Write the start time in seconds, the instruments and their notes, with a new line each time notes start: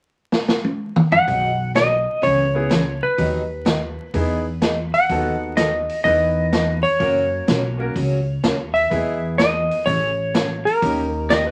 0.32 snare
0.48 snare
0.64 high tom
0.96 mid tom
1.12 electric slide guitar F#5, floor tom
1.27 upright bass B1, steel-string acoustic guitar B2 D#3 F#3 B3 D#4 G#4, kick, open hi-hat
1.75 steel-string acoustic guitar B2 D#3 F#3 B3 D#4 G#4, electric slide guitar D#5, snare, closed hi-hat
2.22 upright bass C#2, steel-string acoustic guitar C#3 E3 B3 C#4 G#4, electric slide guitar C#5, kick, open hi-hat
2.54 upright piano B3 C#4 E4 G#4
2.69 steel-string acoustic guitar C#3 E3 B3 C#4 G#4, snare, closed hi-hat
3.03 electric slide guitar B4
3.18 upright bass D#2, steel-string acoustic guitar D#3 F#3 B3 D#4 G#4, kick, open hi-hat
3.65 steel-string acoustic guitar D#3 F#3 B3 D#4 G#4, snare, closed hi-hat
4.14 upright bass E2, steel-string acoustic guitar E3 B3 D#4 G#4, upright piano B3 D#4 E4 G#4, kick, open hi-hat
4.61 steel-string acoustic guitar E3 B3 D#4 G#4, snare, closed hi-hat
4.94 electric slide guitar F#5, open hi-hat
5.09 upright bass D#2, steel-string acoustic guitar D#3 F#3 B3 D#4 A4, upright piano B3 D#4 F#4 A4, kick, open hi-hat
5.56 steel-string acoustic guitar D#3 F#3 B3 D#4 A4, electric slide guitar D#5, snare, closed hi-hat
5.89 open hi-hat
6.04 upright bass E2, steel-string acoustic guitar E3 B3 D#4 G#4, upright piano B3 D#4 E4 B4, electric slide guitar D#5, kick, open hi-hat
6.52 steel-string acoustic guitar E3 B3 D#4 G#4, snare, closed hi-hat
6.83 electric slide guitar C#5, open hi-hat
6.99 upright bass F#2, steel-string acoustic guitar C#3 F#3 A#3 C#4 F#4, upright piano A#3 C#4 F#4 A#4, kick, open hi-hat
7.47 upright bass B1, steel-string acoustic guitar C#3 F#3 A#3 C#4 F#4, snare, closed hi-hat
7.78 upright piano A#3 C#4 F#4 A#4
7.95 upright bass C#2, steel-string acoustic guitar C#3 F#3 A#3 C#4 F#4, kick, open hi-hat
8.43 upright bass D#2, steel-string acoustic guitar C#3 F#3 A#3 C#4 F#4, snare, closed hi-hat
8.74 electric slide guitar E5, open hi-hat
8.90 upright bass E2, steel-string acoustic guitar E3 B3 D#4 G#4, upright piano B3 E4 G#4, kick, open hi-hat
9.38 steel-string acoustic guitar E3 B3 D#4 G#4, electric slide guitar D#5, snare, closed hi-hat
9.71 open hi-hat
9.86 upright bass A1, steel-string acoustic guitar C#3 E3 A3 C#4 G#4, electric slide guitar C#5, kick, open hi-hat
10.34 steel-string acoustic guitar C#3 E3 A3 C#4 G#4, snare, closed hi-hat
10.65 electric slide guitar A#4, open hi-hat
10.82 upright bass D#2, steel-string acoustic guitar D#3 A#3 C#4 G4 A#4, upright piano A#3 C#4 D#4 G4, kick, open hi-hat
11.29 steel-string acoustic guitar D#3 A#3 C#4 G4 A#4, electric slide guitar D#5, snare, closed hi-hat
11.47 electric slide guitar B4